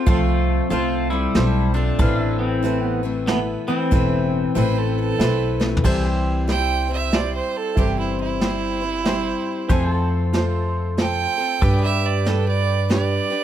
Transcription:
Already playing: pedal steel guitar C5
0.06 upright bass C2, steel-string acoustic guitar F3 A3 C4 F4 A4, pedal steel guitar A3 F4, upright piano C4 F4 A4 C5, kick, closed hi-hat
0.69 upright bass C2, steel-string acoustic guitar A3 C4 F4 A4, pedal steel guitar A3 F4, upright piano C4 F4 A4 C5, closed hi-hat
1.10 pedal steel guitar G3 E4, steel-string acoustic guitar C4 A4
1.34 upright bass B1, steel-string acoustic guitar A3 C4 A4, upright piano C4 A4 C5, snare, closed hi-hat
1.74 pedal steel guitar A3 D4, steel-string acoustic guitar C4 F4 A4
1.98 upright bass A1, steel-string acoustic guitar A2 E3 A3 C4 E4 B4, upright piano C4 E4 A4 B4, pedal steel guitar A4 F5, kick, closed hi-hat
2.22 pedal steel guitar E5
2.39 pedal steel guitar E3 C4
2.63 steel-string acoustic guitar A3 C4 E4 B4, upright piano C4 E4 A4 B4, closed hi-hat
2.82 pedal steel guitar B3
3.03 steel-string acoustic guitar A3 C4 E4 B4
3.27 pedal steel guitar E3 B3, steel-string acoustic guitar A3 E4 B4, upright piano B3 E4 A4 B4, snare, closed hi-hat
3.68 pedal steel guitar E3 C4, steel-string acoustic guitar A3 C4 E4 B4
3.91 upright bass E1, steel-string acoustic guitar A2 E3 A3 C4 E4 B4, upright piano C4 E4 A4 B4, kick, closed hi-hat
4.55 upright bass A1, steel-string acoustic guitar A3 C4 E4 B4, upright piano C4 E4 A4 B4, fiddle C5, closed hi-hat
4.78 fiddle A4
5.00 fiddle A4
5.18 upright bass B1, steel-string acoustic guitar A3 C4 E4, upright piano C4 E4 A4 B4, snare, closed hi-hat
5.23 steel-string acoustic guitar B4
5.60 steel-string acoustic guitar A3 C4 E4 B4, snare
5.77 floor tom
5.83 upright bass C2, steel-string acoustic guitar C3 E3 G3 C4 E4 C5, upright piano E4 G4 C5, pedal steel guitar A4 C5 E5, kick, crash
6.10 pedal steel guitar G4
6.47 steel-string acoustic guitar G3 C4 E4 C5, upright piano E4 G4 C5, fiddle G5, snare, closed hi-hat
6.88 steel-string acoustic guitar G3 C4 E4 C5
6.93 fiddle E5
7.11 steel-string acoustic guitar G3 C4 E4 C5, upright piano E4 G4 C5, fiddle D5, snare, closed hi-hat
7.35 fiddle C5
7.57 fiddle A4
7.75 upright bass G1, steel-string acoustic guitar C3 E3 G3 C4 E4 C5, upright piano E4 G4 C5, fiddle G4, kick, closed hi-hat
7.99 fiddle E4
8.20 fiddle E4
8.40 steel-string acoustic guitar G3 C4 E4 C5, upright piano E4 G4 C5, snare, closed hi-hat
8.81 steel-string acoustic guitar G3 C4 E4 C5
9.04 steel-string acoustic guitar G3 C4 E4 C5, upright piano E4 G4 C5, snare, closed hi-hat
9.68 upright bass F2, steel-string acoustic guitar F3 A3 C4 A4, upright piano C4 A4 C5, pedal steel guitar G4 C5 G#5, kick, closed hi-hat
9.92 pedal steel guitar A4 A5
10.33 steel-string acoustic guitar A3 C4 F4 A4, upright piano F4 A4 C5, snare, closed hi-hat
10.97 steel-string acoustic guitar A3 C4 F4 A4, upright piano F4 A4 C5, fiddle G5, snare, closed hi-hat
11.38 steel-string acoustic guitar C4 F4 A4
11.61 upright bass G2, steel-string acoustic guitar G3 D4 G4 B4, upright piano D4 G4 B4, pedal steel guitar A4 B4 D5, kick, closed hi-hat
11.84 pedal steel guitar G4, fiddle E5
12.06 fiddle D5
12.25 steel-string acoustic guitar G3 D4 G4 B4, upright piano D4 G4 B4, fiddle A4, snare, closed hi-hat
12.48 fiddle D5
12.89 steel-string acoustic guitar G3 D4 G4 B4, upright piano D4 G4 B4, fiddle D5, snare, closed hi-hat
13.30 steel-string acoustic guitar D4 G4 B4

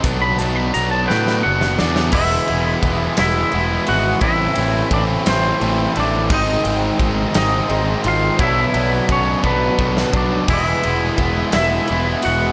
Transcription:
0.02 picked electric bass B1, overdriven electric guitar B2 F#3 B3 D4, kick, closed hi-hat
0.22 clean electric guitar B5
0.38 picked electric bass B1, overdriven electric guitar F#3 B3 D4, clean electric guitar A5, closed hi-hat
0.56 clean electric guitar B5
0.73 picked electric bass B1, overdriven electric guitar B2 F#3 B3 D4, clean electric guitar A#5, closed hi-hat
0.91 clean electric guitar A5
1.07 picked electric bass A2, clean electric guitar B3 B4 G5, overdriven electric guitar B3 D4, snare
1.11 overdriven electric guitar F#3
1.27 snare
1.41 overdriven electric guitar B2 F#3 B3 D4, clean electric guitar F#5
1.46 picked electric bass F#1
1.61 snare
1.77 picked electric bass E2, overdriven electric guitar F#3 B3 D4, clean electric guitar D4 D5, snare
1.96 snare
2.12 picked electric bass E1, overdriven electric guitar E3 G#3 B3, clean electric guitar E4 E5, kick, crash
2.16 overdriven electric guitar E4
2.47 picked electric bass E1, overdriven electric guitar G#3 B3 E4, ride
2.82 picked electric bass E1, overdriven electric guitar E3 G#3 B3, clean electric guitar D5, kick, ride
2.86 overdriven electric guitar E4
3.17 picked electric bass E1, distorted electric guitar E3, overdriven electric guitar G#3 B3 E4, clean electric guitar E4, snare, ride
3.21 clean electric guitar E5
3.51 picked electric bass E1, overdriven electric guitar E3 G#3 B3 E4, ride
3.87 picked electric bass G#1, overdriven electric guitar G#3 B3 E4, clean electric guitar F#4 F#5, ride
4.21 picked electric bass A1, overdriven electric guitar A2 E3 A3 C4, clean electric guitar E4 E5, kick, ride
4.25 overdriven electric guitar E4
4.55 picked electric bass A1, overdriven electric guitar C4 E4, ride
4.60 overdriven electric guitar A3
4.90 picked electric bass A1, overdriven electric guitar E3 A3 C4, clean electric guitar D4 D5, kick, ride
4.95 overdriven electric guitar E4
5.26 picked electric bass A1, distorted electric guitar A2 E3, overdriven electric guitar A3 C4 E4, clean electric guitar C4 C5, snare, ride
5.61 picked electric bass A1, overdriven electric guitar E3 A3 C4 E4, ride
5.95 picked electric bass A1, overdriven electric guitar A3 C4 E4, clean electric guitar D4, ride
6.00 clean electric guitar D5
6.30 picked electric bass G#1, overdriven electric guitar G#2 D#3 G#3, clean electric guitar D#4, kick, crash
6.34 overdriven electric guitar C4 D#4, clean electric guitar D#5
6.64 picked electric bass G#1, overdriven electric guitar G#3 C4 D#4, ride
6.99 picked electric bass G#1, overdriven electric guitar D#3 G#3 C4 D#4, kick, ride
7.34 picked electric bass G#1, distorted electric guitar G#2 D#3, overdriven electric guitar G#3 C4 D#4, clean electric guitar D#4 D#5, snare, ride
7.67 picked electric bass G#1, overdriven electric guitar D#3 G#3 C4 D#4, ride
8.03 picked electric bass G#1, overdriven electric guitar G#3 C4 D#4, clean electric guitar F4, ride
8.08 clean electric guitar F5
8.36 picked electric bass B1, overdriven electric guitar B2 F#3 B3 D4, kick, ride
8.40 clean electric guitar E4 E5
8.72 picked electric bass B1, overdriven electric guitar F#3 B3 D4, ride
9.08 picked electric bass B1, overdriven electric guitar B2 F#3 B3, clean electric guitar C#4, kick, ride
9.12 overdriven electric guitar D4, clean electric guitar C#5
9.43 picked electric bass B1, distorted electric guitar B2, overdriven electric guitar F#3 B3 D4, clean electric guitar B3 B4, kick
9.79 picked electric bass B1, overdriven electric guitar B2 F#3 B3 D4, kick
9.97 snare
10.13 picked electric bass B1, overdriven electric guitar F#3 B3 D4, clean electric guitar D4 D5, kick
10.48 picked electric bass E1, overdriven electric guitar E3 G#3 B3 E4, clean electric guitar E4, kick, crash
10.53 clean electric guitar E5
10.83 picked electric bass E1, overdriven electric guitar G#3 B3 E4, ride
11.17 picked electric bass E1, overdriven electric guitar E3 G#3 B3 E4, kick, ride
11.52 picked electric bass E1, distorted electric guitar E3, overdriven electric guitar B3 E4, clean electric guitar E4, snare, ride
11.56 overdriven electric guitar G#3, clean electric guitar E5
11.88 picked electric bass E1, overdriven electric guitar E3 G#3 B3, ride
11.92 overdriven electric guitar E4
12.22 picked electric bass E1, overdriven electric guitar G#3 B3 E4, clean electric guitar F#4 F#5, ride

